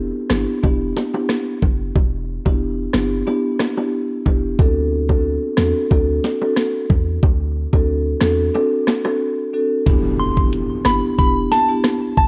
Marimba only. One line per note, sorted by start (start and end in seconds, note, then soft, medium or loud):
0.30 0.53 B3 medium
0.30 0.53 D4 medium
0.30 0.53 E4 medium
0.30 0.53 G4 medium
0.63 1.10 B3 medium
0.63 1.10 D4 medium
0.63 1.10 E4 medium
0.63 1.10 G4 loud
1.13 1.35 B3 medium
1.13 1.35 D4 medium
1.13 1.35 E4 medium
1.13 1.35 G4 medium
2.45 2.67 B3 medium
2.45 2.67 D4 medium
2.45 2.67 E4 medium
2.45 2.67 G4 medium
2.94 3.17 B3 medium
2.94 3.17 D4 medium
2.94 3.17 E4 medium
2.94 3.17 G4 medium
3.27 3.73 B3 medium
3.27 3.73 D4 medium
3.27 3.73 E4 medium
3.27 3.74 G4 loud
3.77 4.22 B3 medium
3.77 4.22 D4 medium
3.77 4.22 E4 medium
3.77 4.23 G4 medium
4.26 4.56 B3 medium
4.26 4.57 D4 medium
4.26 4.57 E4 medium
4.26 4.57 G4 medium
4.59 5.05 C4 medium
4.59 5.05 D4 medium
4.59 5.05 F#4 medium
4.59 5.05 A4 loud
5.09 5.31 C4 medium
5.09 5.31 D4 medium
5.09 5.31 F#4 medium
5.09 5.31 A4 medium
5.58 5.80 C4 medium
5.58 5.80 D4 medium
5.58 5.81 F#4 medium
5.58 5.81 A4 medium
5.91 6.37 C4 medium
5.91 6.37 D4 medium
5.91 6.37 F#4 medium
5.91 6.37 A4 loud
6.41 6.62 C4 medium
6.41 6.63 D4 medium
6.41 6.63 F#4 medium
6.41 6.63 A4 medium
7.73 7.94 C4 medium
7.73 7.94 D4 medium
7.73 7.95 F#4 medium
7.73 7.95 A4 medium
8.21 8.44 C4 medium
8.21 8.44 D4 medium
8.21 8.44 F#4 medium
8.21 8.44 A4 medium
8.54 9.01 C4 medium
8.54 9.01 D4 medium
8.54 9.01 F#4 medium
8.54 9.01 A4 loud
9.05 9.50 C4 medium
9.05 9.50 D4 medium
9.05 9.50 F#4 medium
9.05 9.50 A4 medium
9.53 9.84 C4 medium
9.53 9.84 D4 medium
9.53 9.84 F#4 medium
9.53 9.84 A4 medium
9.86 10.33 B3 medium
9.86 10.33 D4 medium
9.86 10.33 E4 medium
9.86 10.33 G4 loud
10.37 10.58 B3 medium
10.37 10.58 D4 medium
10.37 10.58 E4 medium
10.37 10.58 G4 medium
10.85 11.08 B3 medium
10.85 11.08 D4 medium
10.85 11.08 E4 medium
10.85 11.08 G4 medium
11.18 11.65 B3 medium
11.18 11.65 D4 medium
11.18 11.65 E4 medium
11.18 11.65 G4 loud
11.69 11.90 B3 medium
11.69 11.90 D4 medium
11.69 11.90 E4 medium
11.69 11.90 G4 medium